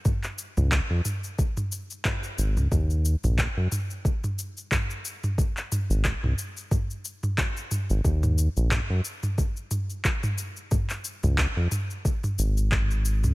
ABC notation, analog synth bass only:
X:1
M:4/4
L:1/16
Q:"Swing 16ths" 1/4=90
K:Ebdor
V:1 name="Analog synth bass" clef=bass
z3 D,, z F,, z8 A,,, D,, | E,,3 B,,, z G,, z8 z2 | z3 A,,, z C,, z8 z A,,, | E,,3 B,,, z G,, z8 z2 |
z3 D,, z F,, z4 A,,,4- A,,, D,, |]